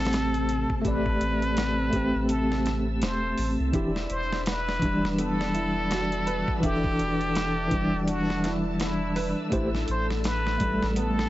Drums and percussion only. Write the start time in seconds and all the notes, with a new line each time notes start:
0.05 snare, closed hi-hat
0.13 snare, closed hi-hat
0.34 closed hi-hat
0.49 closed hi-hat
0.70 kick
0.85 kick, closed hi-hat
1.06 kick
1.21 closed hi-hat
1.42 closed hi-hat
1.57 snare, closed hi-hat
1.93 kick, closed hi-hat
2.29 closed hi-hat
2.52 snare
2.66 snare, closed hi-hat
3.02 snare, closed hi-hat
3.38 open hi-hat
3.73 kick, closed hi-hat
3.96 snare
4.10 closed hi-hat
4.32 snare
4.46 snare, closed hi-hat
4.69 snare
4.82 kick, closed hi-hat
5.05 snare
5.18 closed hi-hat
5.41 snare
5.55 closed hi-hat
5.91 snare, closed hi-hat
6.12 closed hi-hat
6.27 closed hi-hat
6.48 kick
6.63 kick, closed hi-hat
6.84 kick
6.99 closed hi-hat
7.21 closed hi-hat
7.35 snare, closed hi-hat
7.71 kick, closed hi-hat
8.08 closed hi-hat
8.30 snare
8.44 snare, closed hi-hat
8.80 snare, closed hi-hat
9.16 open hi-hat
9.52 kick, closed hi-hat
9.75 snare
9.88 closed hi-hat
10.10 snare
10.24 snare, closed hi-hat
10.47 snare
10.60 kick, closed hi-hat
10.82 snare
10.96 closed hi-hat
11.19 snare